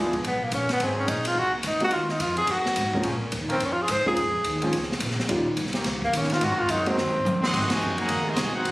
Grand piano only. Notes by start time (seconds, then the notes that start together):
Already playing: G#3 B3 D4 E4 F4
1.81 G#3 A#3 C4 D#4 F#4
2.94 G#3 A#3 C4 C#4 F4
4.06 G#3 A#3 C4 C#4 F4
4.63 G#3 A#3 C4 C#4 F4
5.29 G3 A#3 C#4 D#4 F4
6.86 G#3 A#3 C4 D#4 F#4